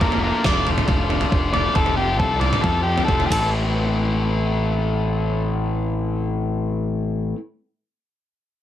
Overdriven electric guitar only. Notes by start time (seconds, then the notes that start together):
0.00 F3 A3 D4 F4
0.20 F3 A3 D4 F4
0.44 F3 A3 D4 F4
0.66 F3 A3 D4 F4
0.88 F3 A3 D4 F4
1.09 F3 A3 D4 F4
1.31 F3 A3 D4 F4
1.53 F3 A3 D4 F4
1.74 F2 C3 F3 A3 C4 F4
1.97 F2 C3 F3 A3 C4 F4
2.18 F2 C3 F3 A3 C4 F4
2.40 F2 C3 F3 A3 C4 F4
2.62 F2 C3 F3 A3 C4 F4
2.85 F2 C3 F3 A3 C4 F4
3.07 F2 C3 F3 A3 C4 F4
3.28 A2 E3 A3 C4
3.33 E4